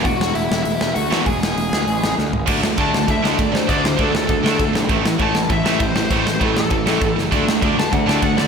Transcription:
<<
  \new Staff \with { instrumentName = "Lead electric guitar" } { \time 4/4 \key d \lydian \tempo 4 = 198 <fis' fis''>4 <e' e''>4 <e' e''>4 <fis' fis''>4 | <gis' gis''>2. r4 | r4 a''4 e''8 dis''8 d''8 c''8 | d''8 c''8 a'8 a'2 r8 |
r4 a''4 e''8 e''8 c''8 c''8 | c''8 c''8 a'8 a'2 r8 | r4. a''8 fis''8 a''8 fis''8 d''8 | }
  \new Staff \with { instrumentName = "Overdriven electric guitar" } { \time 4/4 \key d \lydian r1 | r1 | r1 | r1 |
r1 | r1 | <d a d'>2.~ <d a d'>8 <d a d'>8 | }
  \new Staff \with { instrumentName = "Distorted electric guitar" } { \clef bass \time 4/4 \key d \lydian r2. r8 <e, b, e>8 | r1 | <d a d'>8 <d a>8 <d a d'>8 <d a>8 <d a>8 <d a d'>8 <d a>8 <d a>8 | <d a d'>8 <d a>8 <d a d'>8 <d a>8 <d a>8 <d a d'>8 <d a>8 <d a>8 |
<a, e a>8 <a, e>8 <a, e a>8 <a, e>8 <a, e>8 <a, e a>8 <a, e>8 <a, e>8 | <a, e a>8 <a, e>8 <a, e a>8 <a, e>8 <a, e>8 <a, e a>8 <a, e>8 <a, e>8 | <d a d'>8 <d a>8 <d a d'>8 <d a>8 <d a>8 <d a d'>8 <d a>8 <d a>8 | }
  \new Staff \with { instrumentName = "Overdriven electric guitar" } { \clef bass \time 4/4 \key d \lydian r2. r8 <e gis b e'>8 | r1 | <d a d'>8 <d a>8 <d a d'>8 <d a>8 <d a>8 <d a d'>8 <d a>8 <d a>8 | <d a d'>8 <d a>8 <d a d'>8 <d a>8 <d a>8 <d a d'>8 <d a>8 <d a>8 |
<a, e a>8 <a, e>8 <a, e a>8 <a, e>8 <a, e>8 <a, e a>8 <a, e>8 <a, e>8 | <a, e a>8 <a, e>8 <a, e a>8 <a, e>8 <a, e>8 <a, e a>8 <a, e>8 <a, e>8 | <d a d'>8 <d a>8 <d a d'>8 <d a>8 <d a>8 <d a d'>8 <d a>8 <d a>8 | }
  \new Staff \with { instrumentName = "Picked electric bass" } { \clef bass \time 4/4 \key d \lydian e,,4 e,,8 e,,8 e,,8 e,,8 d,8 e,8 | e,,8 e,,8 e,,8 d,8 a,,4 d,8 gis,,8 | d,8 d,8 d,8 d,8 d,8 d,8 d,8 d,8 | d,8 d,8 d,8 d,8 d,8 d,8 d,8 b,,8 |
a,,8 a,,8 a,,8 a,,8 a,,8 a,,8 a,,8 a,,8 | a,,8 a,,8 a,,8 a,,8 a,,8 a,,8 a,,8 fis,,8 | d,8 d,8 d,8 d,8 d,8 d,8 d,8 d,8 | }
  \new DrumStaff \with { instrumentName = "Drums" } \drummode { \time 4/4 <hho bd>8 sn8 hho8 sn8 hho8 sn8 hho8 sn8 | <hho bd>8 sn8 hho8 sn8 hho8 sn8 sn8 tomfh8 | <cymc bd>8 sn8 <cymc bd>8 sn8 <cymc bd>8 sn8 <cymc bd>8 sn8 | <cymc bd>8 sn8 <cymc bd>8 sn8 <cymc bd>8 sn8 <cymc bd>8 sn8 |
<cymc bd>8 sn8 <cymc bd>8 sn8 <cymc bd>8 sn8 <cymc bd>8 sn8 | <cymc bd>8 sn8 <cymc bd>8 sn8 <cymc bd>8 sn8 <cymc bd>8 sn8 | <cymc bd>8 sn8 <cymc bd>8 sn8 <cymc bd>8 sn8 <cymc bd>8 sn8 | }
>>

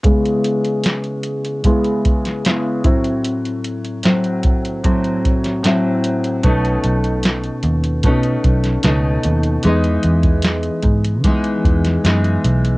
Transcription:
<<
  \new Staff \with { instrumentName = "Nylon-string guitar" } { \time 4/4 \key cis \minor \tempo 4 = 75 <cis gis b e'>2 <cis gis b e'>4 <cis gis b e'>8 <a, fis c' e'>8~ | <a, fis c' e'>4 <a, fis c' e'>4 <a, fis c' e'>4 <a, fis c' e'>4 | <b, a cis' dis'>2 <b, a cis' dis'>4 <b, a cis' dis'>4 | <e gis b dis'>2 <e gis b dis'>4 <e gis b dis'>4 | }
  \new Staff \with { instrumentName = "Picked electric bass" } { \clef bass \time 4/4 \key cis \minor r1 | r1 | b,,8 b,,4 dis,8 b,8 b,,8 cis,8 dis,8 | e,8 e,4 gis,8 e8 e,8 fis,8 b,,8 | }
  \new DrumStaff \with { instrumentName = "Drums" } \drummode { \time 4/4 <hh bd>16 hh16 hh16 hh16 <hh sn>16 hh16 hh16 hh16 <hh bd>16 hh16 <hh bd>16 <hh sn>16 <hh sn>8 <hh bd>16 hh16 | hh16 hh16 hh16 hh16 <hh sn>16 hh16 <hh bd>16 hh16 <hh bd>16 hh16 <hh bd>16 <hh sn>16 <hh sn>8 hh16 hh16 | <hh bd>16 hh16 hh16 hh16 <hh sn>16 hh16 hh16 hh16 <hh bd>16 hh16 <hh bd>16 <hh sn>16 <hh sn>8 hh16 hh16 | hh16 hh16 hh16 <hh bd>16 <hh sn>16 hh16 <hh bd>16 hh16 <hh bd>16 hh16 <hh bd>16 <hh sn>16 <hh sn>16 hh16 hh16 hh16 | }
>>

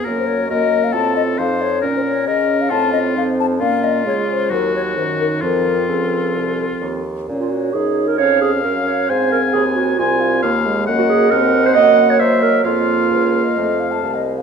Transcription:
<<
  \new Staff \with { instrumentName = "Flute" } { \time 4/4 \key bes \minor \tempo 4 = 134 r16 c''16 des''8 ees''8. f''16 a''8 ees''8 f''8 des''8 | r16 c''16 des''8 ees''8. f''16 a''8 ees''8 f''8 a''8 | f''8 ees''8 des''8 c''8 bes'8 des''8 c''8 bes'8 | bes'4 a'2~ a'8 r8 |
des''2 f''2 | f''4 aes''4 aes''8 f''4. | ees''2 ges''4 ees''4 | des''4 c''16 des''8 ees''8. f''16 a''8 ees''8 f''16 | }
  \new Staff \with { instrumentName = "Oboe" } { \time 4/4 \key bes \minor bes'4 bes'4 a'4 c''4 | bes'4 bes'4 f'4. r8 | f'2 ges'2 | f'2.~ f'8 r8 |
r2 f''2 | aes''2 aes''4 f''4 | ges''4 ges''2 fes''4 | f''2.~ f''8 r8 | }
  \new Staff \with { instrumentName = "Clarinet" } { \time 4/4 \key bes \minor ges'4 ges'4 f'4 ees'4 | des'2 f'4 ees'4 | des'4 f'4 ees'2 | c'2.~ c'8 r8 |
r16 f'16 ges'8 aes'8. bes'16 des''8 aes'8 bes'8 des''8 | c''8 bes'8 aes'8 ges'8 f'4. r8 | r16 ges'16 aes'8 bes'8. c''16 ees''8. des''16 c''8 bes'8 | f'2. r4 | }
  \new Staff \with { instrumentName = "French horn" } { \time 4/4 \key bes \minor bes4 bes4 c'4. r8 | des'2 c'2 | bes4 aes4 ges4 ees4 | f2.~ f8 r8 |
des'4 ees'4 des'4 des'4 | c'2 c'4 bes8 aes8 | bes4 c'4 bes2 | bes2 a4. r8 | }
  \new Staff \with { instrumentName = "Bassoon" } { \clef bass \time 4/4 \key bes \minor ges,4 ges,4 a,4 f,4 | bes,4 des4 a,4 f,4 | bes,4 des4 ees,4 ges,4 | f,4 des,4 c,4 ees,4 |
bes,4 ges,4 f,4 ges,4 | aes,4 ees,4 c,4 ees,4 | ges,4 ees,4 ges,4 ges4 | f,4 des,4 f,4 c,4 | }
>>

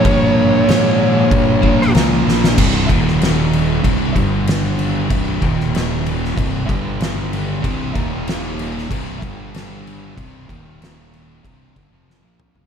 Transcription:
<<
  \new Staff \with { instrumentName = "Lead electric guitar" } { \time 4/4 \key c \minor \tempo 4 = 95 des''2. r4 | r1 | r1 | r1 |
r1 | }
  \new Staff \with { instrumentName = "Distorted electric guitar" } { \clef bass \time 4/4 \key c \minor <bes, f bes>2~ <bes, f bes>8 <bes, f bes>8 <bes, f bes>4 | r1 | r1 | <c, g, c>8 <ees, bes, ees>4. <c, g, c>8 <g, d g>4. |
<c, g, c>8 <ees, bes, ees>4. <c, g, c>8 <g, d>16 <f, c f>8 <bes, f bes>8 <fis, des>16 | }
  \new Staff \with { instrumentName = "Distorted electric guitar" } { \clef bass \time 4/4 \key c \minor <bes, f bes>2 <bes, f bes>2 | <c, g, c>8 <ees, bes, ees>4. <c, g, c>8 <g, d g>4. | <c, g, c>8 <ees, bes, ees>4. <c, g, c>8 <g, d g>4. | <c, g, c>8 <ees, bes, ees>4. <c, g, c>8 <g, d g>4. |
<c, g, c>8 <ees, bes, ees>4. <c, g, c>8 <g, d>16 <f, c f>8 <bes, f bes>8 <fis, des>16 | }
  \new Staff \with { instrumentName = "Distorted electric guitar" } { \clef bass \time 4/4 \key c \minor <bes, f bes>2~ <bes, f bes>8 <bes, f bes>8 <bes, f bes>4 | <c, g, c>8 <ees, bes, ees>4. <c, g, c>8 <g, d g>4. | <c, g, c>8 <ees, bes, ees>4. <c, g, c>8 <g, d g>4. | <c, g, c>8 <ees, bes, ees>4. <c, g, c>8 <g, d g>4. |
<c, g, c>8 <ees, bes, ees>4. <c, g, c>8 <g, d>16 <f, c f>8 <bes, f bes>8 <fis, des>16 | }
  \new Staff \with { instrumentName = "Fingered electric bass" } { \clef bass \time 4/4 \key c \minor g,4 aes,4 g,4 des,8 bes,,8 | c,,8 ees,,4. c,,8 g,,4. | c,,8 ees,,4. c,,8 g,,4. | c,,8 ees,,4. c,,8 g,,4. |
c,,8 ees,,4. c,,8 g,,16 f,,8 bes,,8 fis,,16 | }
  \new DrumStaff \with { instrumentName = "Drums" } \drummode { \time 4/4 <cymc bd>4 <cymc sn>4 <cymc bd>8 bd16 sn16 <cymc sn>8 sn16 sn16 | <cymc bd>8 <cymc bd>16 sn16 <cymc sn>8 cymc8 <cymc bd>8 <cymc bd>8 <cymc sn>8 cymc8 | <cymc bd>8 <cymc bd>16 sn16 <cymc sn>8 cymc16 sn16 <cymc bd>8 <cymc bd>8 <cymc sn>8 cymc8 | <cymc bd>8 <cymc bd>8 <cymc sn>8 cymc16 sn16 <cymc bd>8 <cymc bd>8 <cymc sn>8 cymc8 |
<cymc bd>8 <cymc bd>8 <cymc sn>8 cymc8 <cymc bd>8 <cymc bd>8 sn8 toml16 tomfh16 | }
>>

